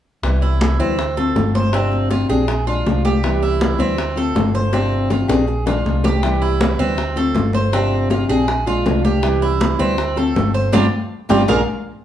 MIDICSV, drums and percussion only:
0, 0, Header, 1, 2, 480
1, 0, Start_track
1, 0, Key_signature, 0, "major"
1, 0, Tempo, 375000
1, 302, Time_signature, 4, 2, 24, 8
1, 15419, End_track
2, 0, Start_track
2, 0, Title_t, "Drums"
2, 300, Note_on_c, 9, 60, 66
2, 304, Note_on_c, 9, 63, 33
2, 428, Note_off_c, 9, 60, 0
2, 432, Note_off_c, 9, 63, 0
2, 546, Note_on_c, 9, 63, 36
2, 548, Note_on_c, 9, 60, 33
2, 674, Note_off_c, 9, 63, 0
2, 676, Note_off_c, 9, 60, 0
2, 782, Note_on_c, 9, 63, 90
2, 790, Note_on_c, 9, 60, 58
2, 910, Note_off_c, 9, 63, 0
2, 918, Note_off_c, 9, 60, 0
2, 1023, Note_on_c, 9, 63, 33
2, 1030, Note_on_c, 9, 60, 37
2, 1151, Note_off_c, 9, 63, 0
2, 1158, Note_off_c, 9, 60, 0
2, 1262, Note_on_c, 9, 63, 28
2, 1263, Note_on_c, 9, 60, 60
2, 1390, Note_off_c, 9, 63, 0
2, 1391, Note_off_c, 9, 60, 0
2, 1503, Note_on_c, 9, 60, 31
2, 1504, Note_on_c, 9, 63, 30
2, 1631, Note_off_c, 9, 60, 0
2, 1632, Note_off_c, 9, 63, 0
2, 1741, Note_on_c, 9, 60, 34
2, 1741, Note_on_c, 9, 61, 79
2, 1743, Note_on_c, 9, 63, 73
2, 1869, Note_off_c, 9, 60, 0
2, 1869, Note_off_c, 9, 61, 0
2, 1871, Note_off_c, 9, 63, 0
2, 1987, Note_on_c, 9, 63, 73
2, 2115, Note_off_c, 9, 63, 0
2, 2215, Note_on_c, 9, 60, 71
2, 2231, Note_on_c, 9, 63, 35
2, 2343, Note_off_c, 9, 60, 0
2, 2359, Note_off_c, 9, 63, 0
2, 2454, Note_on_c, 9, 60, 32
2, 2469, Note_on_c, 9, 63, 38
2, 2582, Note_off_c, 9, 60, 0
2, 2597, Note_off_c, 9, 63, 0
2, 2695, Note_on_c, 9, 60, 53
2, 2704, Note_on_c, 9, 63, 55
2, 2823, Note_off_c, 9, 60, 0
2, 2832, Note_off_c, 9, 63, 0
2, 2942, Note_on_c, 9, 60, 32
2, 2945, Note_on_c, 9, 63, 29
2, 3070, Note_off_c, 9, 60, 0
2, 3073, Note_off_c, 9, 63, 0
2, 3176, Note_on_c, 9, 60, 67
2, 3180, Note_on_c, 9, 63, 32
2, 3304, Note_off_c, 9, 60, 0
2, 3308, Note_off_c, 9, 63, 0
2, 3420, Note_on_c, 9, 63, 27
2, 3425, Note_on_c, 9, 60, 31
2, 3548, Note_off_c, 9, 63, 0
2, 3553, Note_off_c, 9, 60, 0
2, 3667, Note_on_c, 9, 63, 70
2, 3668, Note_on_c, 9, 60, 37
2, 3668, Note_on_c, 9, 61, 72
2, 3795, Note_off_c, 9, 63, 0
2, 3796, Note_off_c, 9, 60, 0
2, 3796, Note_off_c, 9, 61, 0
2, 3905, Note_on_c, 9, 63, 77
2, 4033, Note_off_c, 9, 63, 0
2, 4145, Note_on_c, 9, 63, 36
2, 4146, Note_on_c, 9, 60, 64
2, 4273, Note_off_c, 9, 63, 0
2, 4274, Note_off_c, 9, 60, 0
2, 4382, Note_on_c, 9, 60, 32
2, 4392, Note_on_c, 9, 63, 33
2, 4510, Note_off_c, 9, 60, 0
2, 4520, Note_off_c, 9, 63, 0
2, 4623, Note_on_c, 9, 63, 85
2, 4627, Note_on_c, 9, 60, 56
2, 4751, Note_off_c, 9, 63, 0
2, 4755, Note_off_c, 9, 60, 0
2, 4861, Note_on_c, 9, 60, 32
2, 4863, Note_on_c, 9, 63, 32
2, 4989, Note_off_c, 9, 60, 0
2, 4991, Note_off_c, 9, 63, 0
2, 5100, Note_on_c, 9, 60, 63
2, 5102, Note_on_c, 9, 63, 31
2, 5228, Note_off_c, 9, 60, 0
2, 5230, Note_off_c, 9, 63, 0
2, 5336, Note_on_c, 9, 60, 28
2, 5340, Note_on_c, 9, 63, 31
2, 5464, Note_off_c, 9, 60, 0
2, 5468, Note_off_c, 9, 63, 0
2, 5579, Note_on_c, 9, 60, 34
2, 5579, Note_on_c, 9, 61, 80
2, 5581, Note_on_c, 9, 63, 82
2, 5707, Note_off_c, 9, 60, 0
2, 5707, Note_off_c, 9, 61, 0
2, 5709, Note_off_c, 9, 63, 0
2, 5820, Note_on_c, 9, 63, 58
2, 5948, Note_off_c, 9, 63, 0
2, 6053, Note_on_c, 9, 60, 77
2, 6063, Note_on_c, 9, 63, 34
2, 6181, Note_off_c, 9, 60, 0
2, 6191, Note_off_c, 9, 63, 0
2, 6296, Note_on_c, 9, 63, 34
2, 6424, Note_off_c, 9, 63, 0
2, 6533, Note_on_c, 9, 61, 84
2, 6537, Note_on_c, 9, 63, 52
2, 6661, Note_off_c, 9, 61, 0
2, 6665, Note_off_c, 9, 63, 0
2, 6779, Note_on_c, 9, 61, 90
2, 6782, Note_on_c, 9, 63, 32
2, 6907, Note_off_c, 9, 61, 0
2, 6910, Note_off_c, 9, 63, 0
2, 7024, Note_on_c, 9, 63, 32
2, 7152, Note_off_c, 9, 63, 0
2, 7255, Note_on_c, 9, 61, 99
2, 7264, Note_on_c, 9, 63, 29
2, 7383, Note_off_c, 9, 61, 0
2, 7392, Note_off_c, 9, 63, 0
2, 7501, Note_on_c, 9, 63, 75
2, 7629, Note_off_c, 9, 63, 0
2, 7732, Note_on_c, 9, 61, 72
2, 7741, Note_on_c, 9, 63, 80
2, 7860, Note_off_c, 9, 61, 0
2, 7869, Note_off_c, 9, 63, 0
2, 7976, Note_on_c, 9, 60, 66
2, 7980, Note_on_c, 9, 63, 34
2, 8104, Note_off_c, 9, 60, 0
2, 8108, Note_off_c, 9, 63, 0
2, 8217, Note_on_c, 9, 60, 32
2, 8221, Note_on_c, 9, 63, 36
2, 8345, Note_off_c, 9, 60, 0
2, 8349, Note_off_c, 9, 63, 0
2, 8457, Note_on_c, 9, 60, 62
2, 8457, Note_on_c, 9, 63, 89
2, 8585, Note_off_c, 9, 60, 0
2, 8585, Note_off_c, 9, 63, 0
2, 8694, Note_on_c, 9, 60, 32
2, 8697, Note_on_c, 9, 63, 32
2, 8822, Note_off_c, 9, 60, 0
2, 8825, Note_off_c, 9, 63, 0
2, 8935, Note_on_c, 9, 60, 58
2, 8936, Note_on_c, 9, 63, 33
2, 9063, Note_off_c, 9, 60, 0
2, 9064, Note_off_c, 9, 63, 0
2, 9168, Note_on_c, 9, 63, 32
2, 9178, Note_on_c, 9, 60, 31
2, 9296, Note_off_c, 9, 63, 0
2, 9306, Note_off_c, 9, 60, 0
2, 9403, Note_on_c, 9, 63, 76
2, 9416, Note_on_c, 9, 60, 36
2, 9416, Note_on_c, 9, 61, 78
2, 9531, Note_off_c, 9, 63, 0
2, 9544, Note_off_c, 9, 60, 0
2, 9544, Note_off_c, 9, 61, 0
2, 9642, Note_on_c, 9, 63, 63
2, 9770, Note_off_c, 9, 63, 0
2, 9885, Note_on_c, 9, 63, 33
2, 9897, Note_on_c, 9, 60, 68
2, 10013, Note_off_c, 9, 63, 0
2, 10025, Note_off_c, 9, 60, 0
2, 10127, Note_on_c, 9, 63, 37
2, 10142, Note_on_c, 9, 60, 33
2, 10255, Note_off_c, 9, 63, 0
2, 10270, Note_off_c, 9, 60, 0
2, 10370, Note_on_c, 9, 63, 58
2, 10380, Note_on_c, 9, 60, 62
2, 10498, Note_off_c, 9, 63, 0
2, 10508, Note_off_c, 9, 60, 0
2, 10619, Note_on_c, 9, 63, 30
2, 10622, Note_on_c, 9, 60, 35
2, 10747, Note_off_c, 9, 63, 0
2, 10750, Note_off_c, 9, 60, 0
2, 10852, Note_on_c, 9, 63, 34
2, 10856, Note_on_c, 9, 60, 65
2, 10980, Note_off_c, 9, 63, 0
2, 10984, Note_off_c, 9, 60, 0
2, 11097, Note_on_c, 9, 63, 33
2, 11102, Note_on_c, 9, 60, 33
2, 11225, Note_off_c, 9, 63, 0
2, 11230, Note_off_c, 9, 60, 0
2, 11338, Note_on_c, 9, 63, 75
2, 11345, Note_on_c, 9, 60, 34
2, 11345, Note_on_c, 9, 61, 85
2, 11466, Note_off_c, 9, 63, 0
2, 11473, Note_off_c, 9, 60, 0
2, 11473, Note_off_c, 9, 61, 0
2, 11580, Note_on_c, 9, 63, 72
2, 11708, Note_off_c, 9, 63, 0
2, 11815, Note_on_c, 9, 60, 65
2, 11943, Note_off_c, 9, 60, 0
2, 12065, Note_on_c, 9, 63, 35
2, 12067, Note_on_c, 9, 60, 36
2, 12193, Note_off_c, 9, 63, 0
2, 12195, Note_off_c, 9, 60, 0
2, 12297, Note_on_c, 9, 60, 59
2, 12302, Note_on_c, 9, 63, 88
2, 12425, Note_off_c, 9, 60, 0
2, 12430, Note_off_c, 9, 63, 0
2, 12535, Note_on_c, 9, 60, 38
2, 12550, Note_on_c, 9, 63, 33
2, 12663, Note_off_c, 9, 60, 0
2, 12678, Note_off_c, 9, 63, 0
2, 12777, Note_on_c, 9, 60, 68
2, 12788, Note_on_c, 9, 63, 32
2, 12905, Note_off_c, 9, 60, 0
2, 12916, Note_off_c, 9, 63, 0
2, 13018, Note_on_c, 9, 60, 35
2, 13024, Note_on_c, 9, 63, 34
2, 13146, Note_off_c, 9, 60, 0
2, 13152, Note_off_c, 9, 63, 0
2, 13264, Note_on_c, 9, 63, 82
2, 13265, Note_on_c, 9, 60, 35
2, 13265, Note_on_c, 9, 61, 83
2, 13392, Note_off_c, 9, 63, 0
2, 13393, Note_off_c, 9, 60, 0
2, 13393, Note_off_c, 9, 61, 0
2, 13738, Note_on_c, 9, 61, 98
2, 13740, Note_on_c, 9, 63, 104
2, 13866, Note_off_c, 9, 61, 0
2, 13868, Note_off_c, 9, 63, 0
2, 14458, Note_on_c, 9, 63, 91
2, 14462, Note_on_c, 9, 61, 99
2, 14586, Note_off_c, 9, 63, 0
2, 14590, Note_off_c, 9, 61, 0
2, 14697, Note_on_c, 9, 63, 83
2, 14700, Note_on_c, 9, 61, 92
2, 14825, Note_off_c, 9, 63, 0
2, 14828, Note_off_c, 9, 61, 0
2, 15419, End_track
0, 0, End_of_file